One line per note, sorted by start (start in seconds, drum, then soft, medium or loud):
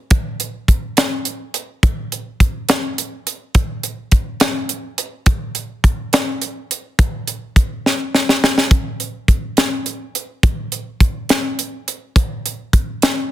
0.10 kick loud
0.10 closed hi-hat medium
0.40 closed hi-hat medium
0.68 kick medium
0.68 closed hi-hat medium
0.97 snare medium
0.97 closed hi-hat medium
1.25 closed hi-hat medium
1.54 closed hi-hat medium
1.83 kick loud
1.83 closed hi-hat medium
2.12 closed hi-hat medium
2.40 kick medium
2.40 closed hi-hat medium
2.69 snare medium
2.69 closed hi-hat medium
2.98 closed hi-hat medium
3.27 closed hi-hat medium
3.55 kick loud
3.55 closed hi-hat medium
3.83 closed hi-hat medium
4.12 kick medium
4.12 closed hi-hat medium
4.40 snare loud
4.40 closed hi-hat medium
4.69 closed hi-hat medium
4.98 closed hi-hat medium
5.26 kick loud
5.26 closed hi-hat medium
5.55 closed hi-hat medium
5.84 kick medium
5.84 closed hi-hat medium
6.13 snare loud
6.13 closed hi-hat medium
6.42 closed hi-hat medium
6.71 closed hi-hat medium
6.99 kick loud
6.99 closed hi-hat medium
7.27 closed hi-hat medium
7.56 kick medium
7.56 closed hi-hat medium
7.86 snare medium
8.15 snare medium
8.29 snare medium
8.44 snare loud
8.58 snare medium
8.71 kick loud
8.71 closed hi-hat medium
9.00 closed hi-hat soft
9.28 kick medium
9.28 closed hi-hat medium
9.57 snare medium
9.57 closed hi-hat medium
9.86 closed hi-hat medium
10.15 closed hi-hat medium
10.43 kick loud
10.43 closed hi-hat medium
10.72 closed hi-hat medium
11.00 kick medium
11.00 closed hi-hat medium
11.29 snare medium
11.29 closed hi-hat medium
11.59 closed hi-hat medium
11.88 closed hi-hat medium
12.16 kick medium
12.16 closed hi-hat medium
12.46 closed hi-hat medium
12.73 kick medium
12.73 closed hi-hat medium
13.02 snare loud
13.02 closed hi-hat medium